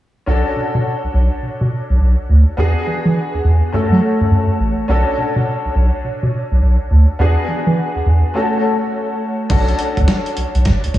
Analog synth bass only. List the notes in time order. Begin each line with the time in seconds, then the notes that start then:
0.27 B1
0.56 B2
0.75 B2
1.04 B1
1.14 B1
1.43 B2
1.61 B2
1.90 B1
2.00 B1
2.29 D2
2.58 E2
2.87 E3
3.05 E3
3.34 E2
3.45 E2
3.74 F#2
3.92 F#3
4.21 F#2
4.31 F#2
4.60 A1
4.89 B1
5.18 B2
5.36 B2
5.65 B1
5.75 B1
6.04 B2
6.23 B2
6.52 B1
6.62 B1
6.91 D2
7.19 E2
7.48 E3
7.67 E3
7.96 E2
8.06 E2
9.50 B1
9.97 D2
10.37 B1
10.55 B1
10.84 D2
10.94 D2